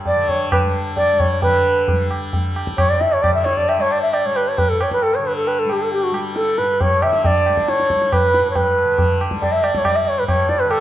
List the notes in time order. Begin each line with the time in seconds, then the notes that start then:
Already playing: G2 D3 G3
0.05 D5, tabla tin, tabla ge
0.16 D3
0.28 C#5, tabla tin, tabla ge
0.52 B4, tabla na, tabla ge
0.63 G3
0.96 D5, tabla tin, tabla ge
1.12 G3
1.19 C#5, tabla tin, tabla ge
1.42 D3 B4, tabla tin, tabla ge
1.88 G3, tabla tin, tabla ge
2.11 tabla na
2.33 G3, tabla tin, tabla ge
2.56 tabla na
2.67 tabla ke
2.77 C#5, tabla na, tabla ge
2.84 G2
2.89 D5
3.01 E5, tabla te
3.13 C#5
3.22 D5, tabla na, tabla ge
3.31 D3 E5
3.44 C#5, tabla te
3.57 D5, tabla ge
3.69 E5, tabla na
3.78 G3 C#5
3.91 D5, tabla na
4.02 E5
4.13 D5, tabla na
4.25 G3 C#5
4.36 B4, tabla na
4.48 C#5
4.58 B4, tabla tin, tabla ge
4.69 G2 A4
4.81 C#5, tabla na
4.91 B4, tabla ke
5.02 A4, tabla tin
5.15 C#5
5.19 D3
5.27 B4
5.36 A4
5.47 B4, tabla tin
5.59 A4
5.65 G3
5.69 G4, tabla na
5.82 A4
5.92 G4, tabla tin
6.03 F#4
6.12 G3, tabla na
6.36 A4, tabla te
6.58 G2 B4, tabla te
6.81 C#5, tabla tin, tabla ge
7.02 D3 E5, tabla na
7.13 tabla ke
7.20 E5
7.24 D5, tabla tin, tabla ge
7.46 G3, tabla na
7.57 tabla ke
7.68 C#5, tabla te
7.80 tabla te
7.90 tabla ke
7.96 G3
8.02 tabla te
8.12 B4, tabla na, tabla ge
8.34 tabla te
8.40 G2
8.50 C#5
8.55 B4, tabla tin, tabla ge
8.85 D3
8.98 tabla tin, tabla ge
9.21 tabla na
9.31 G3, tabla ke
9.41 D5, tabla tin, tabla ge
9.52 E5
9.63 D5, tabla na
9.75 G3 C#5, tabla ke
9.85 D5, tabla na, tabla ge
9.96 E5
10.08 C#5
10.19 G2 B4
10.27 C#5, tabla na, tabla ge
10.49 D5, tabla te
10.59 B4
10.65 D3
10.71 A4, tabla na